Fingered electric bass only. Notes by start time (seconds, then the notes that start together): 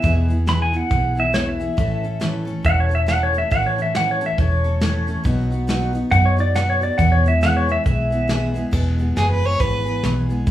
0.04 E2
0.91 B1
1.78 A1
2.65 E1
3.52 A1
4.38 E1
5.25 B1
6.12 F#2
6.99 E2
7.86 B1
8.73 E1
9.16 F#1
9.60 G#1
10.03 B1
10.47 E2